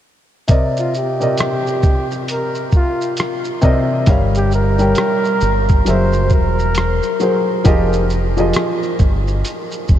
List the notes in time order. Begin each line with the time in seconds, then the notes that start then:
0.48 C3 C4 A#4 D5 D#5, kick, closed hi-hat, shaker
0.77 F4, shaker
0.94 G4, shaker
1.20 C3 C4 A#4 D5 D#5, shaker
1.37 cross-stick, closed hi-hat, shaker
1.67 shaker
1.83 kick, shaker
2.11 shaker
2.28 A#4, closed hi-hat, shaker
2.55 shaker
2.72 kick, shaker
2.76 F4
3.01 shaker
3.17 cross-stick, closed hi-hat, shaker
3.44 shaker
3.61 C3 C4 A#4 D5 D#5, kick, shaker
4.06 G1 G3 G4 A#4 C#5 F5, kick, closed hi-hat, shaker
4.35 G4, shaker
4.52 A#4, shaker
4.78 G3 G4 A#4 C#5 G5, shaker
4.95 cross-stick, closed hi-hat, shaker
5.24 shaker
5.41 G1, shaker
5.69 kick, shaker
5.85 F#1 F#3 F#4 G#4 A#4 E5, closed hi-hat, shaker
5.89 C5
6.13 shaker
6.30 E1, kick, shaker
6.34 A#4
6.59 shaker
6.75 cross-stick, closed hi-hat, shaker
7.03 shaker
7.20 F#3 F#4 G#4 A#4 C5, shaker
7.64 F1 F3 F4 G4 G#4 A#4 D#5, kick, closed hi-hat, shaker
7.93 shaker
8.10 shaker
8.37 F3 F4 G4 G#4 A#4 D#5, shaker
8.54 cross-stick, closed hi-hat, shaker
8.83 shaker
8.99 G1, kick, shaker
9.27 shaker
9.45 closed hi-hat, shaker
9.71 shaker
9.88 F1, kick, shaker